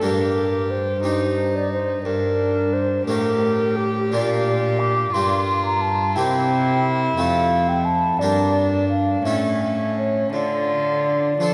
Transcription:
0.02 harpsichord G2 A#3 D4 G4, cello G2, violin G4, flute A#4
0.71 flute C5
1.03 harpsichord G2 D#4 G4, cello G2, violin D#4
1.56 flute D5
1.73 flute C5
2.05 cello G2, harpsichord G2, violin D4, flute A#4
2.73 flute C5
3.06 cello A2, harpsichord A2 A#3 D4 G4, violin G4, flute A#4
3.76 flute G4
4.11 cello A#2, harpsichord A#2 A#3 D4 F4, flute D5
4.80 flute D6
5.13 cello G2, harpsichord G2 A#3 D4 G4, violin F4, flute C6
5.65 flute A#5
5.81 flute A5
6.15 cello C3, harpsichord C3 A#3 E4 G4, violin E4, flute G5
7.17 cello F2, harpsichord F2 A3 C4 A4, flute F5
7.69 flute G5
7.85 flute A5
8.19 cello G2, harpsichord G2 D4 G4 A#4, violin D4, flute D5
8.89 flute F5
9.25 cello A2, harpsichord A2 C#4 E4 A4, violin C#4, flute E5
9.97 flute C#5
10.33 cello D3, harpsichord D3, violin F4, flute D5
11.40 harpsichord F3 D4 F4 A4, cello F3, violin A4

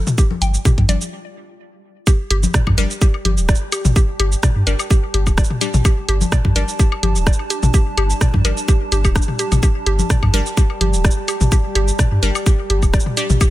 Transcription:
Already playing: synth texture G3 F4, ambient pad G4 D5 A5
0.07 mid tom, shaker
0.18 synth arpeggio sound G4, kick, shaker
0.31 high conga
0.42 sub bass G1, synth arpeggio sound G5, closed hi-hat, shaker
0.54 shaker
0.65 synth arpeggio sound G4, kick, mid tom, shaker
0.78 sub bass G2, kick, closed hi-hat, high conga
0.89 sub bass G1, synth stab G3 D4 D5, synth arpeggio sound D5, closed hi-hat, high conga, shaker
1.01 shaker
2.07 synth texture G3 G4, synth arpeggio sound G4, ambient pad G4, kick, high woodblock, shaker
2.31 sub bass G1, synth arpeggio sound G4, closed hi-hat
2.43 high conga, shaker
2.54 synth arpeggio sound D5, kick, cross-stick, mid tom, shaker
2.67 sub bass G2, ambient pad D5, kick, high conga, high woodblock
2.78 sub bass G1, synth stab G3 D4 D5, synth arpeggio sound A#4, closed hi-hat, shaker
2.90 shaker
3.01 synth arpeggio sound G4, kick, shaker
3.14 high woodblock
3.25 sub bass G1, synth arpeggio sound G4, closed hi-hat, high conga
3.29 ambient pad A5
3.38 sub bass D1, shaker
3.49 synth arpeggio sound D5, kick, cross-stick, shaker
3.55 shaker
3.72 synth arpeggio sound G4, closed hi-hat, high woodblock, shaker
3.85 sub bass A1, mid tom, shaker
3.96 synth arpeggio sound G4, kick, shaker
4.20 sub bass G1, synth arpeggio sound G4, closed hi-hat, high woodblock
4.32 shaker
4.43 synth arpeggio sound D5, kick, cross-stick, mid tom, shaker
4.56 sub bass G2
4.67 sub bass G1, synth stab G3 D4 D5, synth arpeggio sound A#4, closed hi-hat, shaker
4.79 high woodblock, shaker
4.90 synth arpeggio sound G4, kick, shaker
5.14 sub bass G1, synth arpeggio sound G4, closed hi-hat
5.27 sub bass D1, kick, high woodblock, shaker
5.38 synth arpeggio sound D5, kick, cross-stick, shaker
5.44 shaker
5.50 mid tom
5.61 synth stab G3 D4 D5, synth arpeggio sound G4, closed hi-hat, shaker
5.74 sub bass A1, mid tom, shaker
5.85 synth texture D4, synth arpeggio sound G4, kick, high woodblock, shaker
6.09 sub bass G1, synth arpeggio sound G4, closed hi-hat
6.21 high conga, shaker
6.32 synth arpeggio sound D5, kick, cross-stick, mid tom, high woodblock, shaker
6.45 sub bass G2, kick, high conga
6.56 sub bass G1, synth stab G3 D4 D5, synth arpeggio sound A#4, closed hi-hat, shaker
6.68 shaker
6.79 synth arpeggio sound G4, kick, shaker
6.92 high woodblock
7.03 sub bass G1, synth arpeggio sound G4, closed hi-hat, high conga
7.16 sub bass D1, shaker
7.27 synth arpeggio sound D5, kick, cross-stick, shaker
7.33 shaker
7.39 high woodblock
7.50 synth arpeggio sound G4, closed hi-hat, shaker
7.63 sub bass A1, mid tom, shaker
7.74 synth arpeggio sound G4, kick, shaker
7.97 sub bass G1, synth arpeggio sound G4, closed hi-hat, high woodblock
8.10 shaker
8.21 synth arpeggio sound D5, kick, cross-stick, mid tom, shaker
8.34 sub bass G2, kick, high conga
8.45 sub bass G1, synth stab G3 D4 D5, synth arpeggio sound A#4, closed hi-hat, high woodblock, shaker
8.57 shaker
8.68 synth arpeggio sound G4, kick, shaker
8.92 sub bass G1, synth arpeggio sound G4, closed hi-hat, shaker
9.05 sub bass D1, synth arpeggio sound G4, kick, high woodblock, shaker
9.16 synth arpeggio sound D4, kick, cross-stick, shaker
9.22 shaker
9.28 mid tom
9.39 synth arpeggio sound G4, closed hi-hat, shaker
9.52 sub bass A1, closed hi-hat, mid tom, high woodblock, shaker
9.63 synth arpeggio sound G4, synth texture G4, kick, high woodblock, shaker
9.86 sub bass G1, synth arpeggio sound G4, closed hi-hat
9.99 high conga, shaker
10.10 synth arpeggio sound D5, kick, cross-stick, mid tom, shaker
10.23 sub bass G2, kick, high conga, high woodblock
10.34 sub bass G1, synth stab G3 D4 D5, synth arpeggio sound A#4, closed hi-hat, shaker
10.46 shaker
10.57 synth arpeggio sound G4, kick, shaker
10.70 high woodblock
10.81 sub bass G1, synth arpeggio sound G4, closed hi-hat, high conga
10.94 sub bass D1, shaker
11.05 synth arpeggio sound D5, kick, cross-stick, shaker
11.11 shaker
11.28 synth arpeggio sound G4, closed hi-hat, high woodblock, shaker
11.41 sub bass A1, mid tom, shaker
11.52 synth arpeggio sound G4, kick, shaker
11.75 sub bass G1, synth arpeggio sound G4, closed hi-hat, high woodblock
11.88 shaker
11.99 synth arpeggio sound D5, kick, cross-stick, mid tom, shaker
12.12 sub bass G2
12.23 sub bass G1, synth stab G3 D4 D5, synth arpeggio sound A#4, closed hi-hat, shaker
12.35 high woodblock, shaker
12.46 synth arpeggio sound G4, kick, shaker
12.70 sub bass G1, synth arpeggio sound G4, closed hi-hat
12.83 sub bass D1, kick, high woodblock, shaker
12.93 synth arpeggio sound D5, kick, cross-stick, shaker
13.00 shaker
13.06 mid tom
13.17 synth stab G3 D4 D5, synth arpeggio sound G4, closed hi-hat, shaker
13.30 sub bass A1, mid tom, shaker
13.41 synth texture A#3, synth arpeggio sound G4, kick, high woodblock, shaker

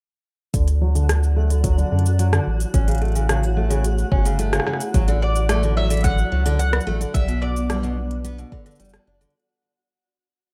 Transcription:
0.53 sub bass D2, steel-string acoustic guitar D3, ambient pad F#3 E4 D5, synth texture F#4 F#5, kick, closed hi-hat, shaker
0.68 closed hi-hat, shaker
0.81 steel-string acoustic guitar F#3
0.95 steel-string acoustic guitar D3, closed hi-hat, shaker
1.09 cross-stick, closed hi-hat, shaker
1.23 shaker
1.36 steel-string acoustic guitar A3
1.50 steel-string acoustic guitar D3, closed hi-hat, shaker
1.64 steel-string acoustic guitar F#3, kick, closed hi-hat, shaker
1.78 steel-string acoustic guitar D3, shaker
1.91 sub bass F#2, steel-string acoustic guitar D3
1.99 closed hi-hat
2.06 shaker
2.19 steel-string acoustic guitar F#3, closed hi-hat, shaker
2.33 steel-string acoustic guitar D3, cross-stick, closed hi-hat, shaker
2.47 sub bass A1
2.60 closed hi-hat, shaker
2.74 sub bass A1, ambient pad A3 C#5, steel-string acoustic guitar C#4, kick, closed hi-hat, shaker
2.88 steel-string acoustic guitar C#3, closed hi-hat, shaker
2.91 closed hi-hat
2.95 closed hi-hat
2.98 steel-string acoustic guitar A3, closed hi-hat
3.02 closed hi-hat
3.08 closed hi-hat
3.12 steel-string acoustic guitar C#3, closed hi-hat
3.15 closed hi-hat, shaker
3.29 steel-string acoustic guitar C#3, cross-stick, closed hi-hat, shaker
3.43 shaker
3.57 steel-string acoustic guitar A3
3.70 steel-string acoustic guitar C#3, closed hi-hat, shaker
3.84 closed hi-hat, shaker
3.98 shaker
4.12 sub bass G1, steel-string acoustic guitar C#4, kick
4.25 steel-string acoustic guitar C#3, closed hi-hat, shaker
4.39 steel-string acoustic guitar A3, closed hi-hat, shaker
4.53 steel-string acoustic guitar C#3, cross-stick, closed hi-hat, shaker
4.60 cross-stick
4.67 steel-string acoustic guitar C#3, cross-stick
4.73 cross-stick
4.80 closed hi-hat, shaker
4.94 sub bass A1, steel-string acoustic guitar F#3, ambient pad F#3 D5, kick, closed hi-hat, shaker
5.08 steel-string acoustic guitar D3, closed hi-hat, shaker
5.22 mandolin D5
5.36 closed hi-hat, shaker
5.49 steel-string acoustic guitar A3, cross-stick, closed hi-hat, shaker
5.63 steel-string acoustic guitar D3, shaker
5.77 steel-string acoustic guitar F#3, mandolin E5
5.90 steel-string acoustic guitar D3, closed hi-hat, shaker
5.94 closed hi-hat
5.97 closed hi-hat
6.01 closed hi-hat
6.04 steel-string acoustic guitar D3, mandolin F#5, kick, closed hi-hat, shaker
6.18 shaker
6.32 sub bass C#2, steel-string acoustic guitar F#3
6.46 steel-string acoustic guitar D3, closed hi-hat, shaker
6.59 mandolin F#5, closed hi-hat, shaker
6.73 cross-stick, closed hi-hat
6.81 shaker
6.87 sub bass A1, steel-string acoustic guitar A3
7.01 steel-string acoustic guitar D3, closed hi-hat, shaker
7.14 sub bass B1, steel-string acoustic guitar G3, ambient pad G3 D4 B4, mandolin E5, kick, closed hi-hat, shaker
7.28 steel-string acoustic guitar B2, closed hi-hat, shaker
7.42 steel-string acoustic guitar B2, mandolin D5
7.56 closed hi-hat, shaker
7.70 steel-string acoustic guitar G3, cross-stick, closed hi-hat, shaker
7.83 steel-string acoustic guitar B2, shaker
8.11 closed hi-hat
8.25 steel-string acoustic guitar B3, closed hi-hat, shaker
8.38 steel-string acoustic guitar B2, shaker
8.52 steel-string acoustic guitar D3, kick
8.66 steel-string acoustic guitar D3, closed hi-hat, shaker
8.71 shaker
8.75 steel-string acoustic guitar G3, shaker
8.80 sub bass F#1, closed hi-hat, shaker
8.85 shaker
8.89 shaker
8.93 steel-string acoustic guitar G3, cross-stick, closed hi-hat
9.07 sub bass F#1, steel-string acoustic guitar D4
9.21 steel-string acoustic guitar D3, closed hi-hat, shaker
9.30 closed hi-hat
9.40 closed hi-hat

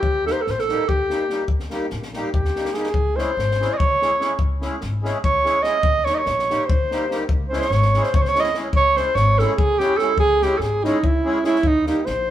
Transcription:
Already playing: alto saxophone G4
0.03 upright bass D#2, kick
0.25 accordion G3 A#3 D#4 G4, alto saxophone A4, snare
0.32 alto saxophone C5
0.41 alto saxophone A4
0.47 upright bass A#1, alto saxophone C5, snare
0.59 alto saxophone A4, snare
0.68 accordion G3 A#3 D#4 G4, snare
0.89 upright bass D#2, alto saxophone G4, kick
1.09 accordion G3 A#3 D#4 G4, snare
1.29 accordion G3 A#3 D#4 G4, snare
1.48 upright bass D#2, kick
1.59 snare
1.70 accordion G3 A#3 D#4 G4, snare
1.90 upright bass A#1, snare
2.02 snare
2.13 accordion G3 A#3 D#4 G4, snare
2.33 upright bass D#2, alto saxophone G4, kick
2.45 snare
2.56 accordion G3 A#3 D#4 G4, snare
2.65 snare
2.73 accordion G3 A#3 D#4 G4, alto saxophone G#4, snare
2.83 snare
2.94 upright bass C#2, kick
3.15 accordion G#3 C#4 E4 G#4, alto saxophone C5, snare
3.37 upright bass G#1, snare
3.51 snare
3.59 accordion G#3 C#4 E4 G#4, snare
3.73 alto saxophone D#5
3.78 upright bass C#2, alto saxophone C#5, kick
4.01 accordion G#3 C#4 E4 G#4, snare
4.19 accordion G#3 C#4 E4 G#4, snare
4.39 upright bass C#2, kick
4.60 accordion G#3 C#4 E4 G#4, snare
4.81 upright bass G#1, snare
5.02 accordion G#3 C#4 E4 G#4, snare
5.24 upright bass C#2, alto saxophone C#5, kick
5.44 accordion G#3 C#4 E4 G#4, snare
5.63 accordion G#3 C#4 E4 G#4, alto saxophone D#5, snare
5.83 upright bass D#2, kick
6.05 accordion G3 A#3 D#4 G4, alto saxophone C#5, snare
6.14 alto saxophone C#5 D#5
6.26 upright bass A#1, snare
6.39 snare
6.48 accordion G3 A#3 D#4 G4, snare
6.66 upright bass D#2, alto saxophone C5, kick
6.91 accordion G3 A#3 D#4 G4, snare
7.09 accordion G3 A#3 D#4 G4, snare
7.29 upright bass C#2, kick
7.49 accordion G#3 C#4 E4, alto saxophone C5
7.53 accordion G#4, snare
7.60 alto saxophone C#5, snare
7.70 upright bass G#1, snare
7.82 snare
7.94 accordion G#3 C#4 E4 G#4, snare
8.03 alto saxophone C5, snare
8.14 upright bass C#2, alto saxophone C#5, kick
8.22 alto saxophone C5, snare
8.28 alto saxophone C#5
8.35 accordion G#3 C#4 E4 G#4, snare
8.40 alto saxophone D#5, snare
8.54 accordion G#3 C#4 E4 G#4, snare
8.73 upright bass C#2, alto saxophone C#5, kick
8.95 accordion G#3 C#4 E4 G#4, alto saxophone C5, snare
9.15 upright bass G#1, alto saxophone C#5, snare
9.38 accordion G#3 C#4 E4 G#4, alto saxophone A4, snare
9.53 alto saxophone G#4 A4
9.58 upright bass C#2, kick
9.79 accordion G#3 C#4 E4 G#4, alto saxophone G4, snare
9.97 accordion G#3 C#4 E4 G#4, alto saxophone A4, snare
10.17 upright bass C#2, alto saxophone G#4, kick
10.41 accordion G#3 C#4 E4 G#4, alto saxophone G4, snare
10.58 upright bass G#1, alto saxophone A4, snare
10.62 alto saxophone G#4
10.83 accordion G#3 C#4 E4 G#4, alto saxophone D#4, snare
11.03 upright bass C#2, alto saxophone E4, kick
11.24 accordion G#3 C#4 E4 G#4
11.43 accordion G#3 C#4 E4 G#4, alto saxophone E4, snare
11.56 snare
11.63 upright bass D#2, alto saxophone D#4, kick
11.85 accordion G3 A#3 D#4 G4, alto saxophone D#4, snare
12.06 upright bass A#1, alto saxophone C5, snare

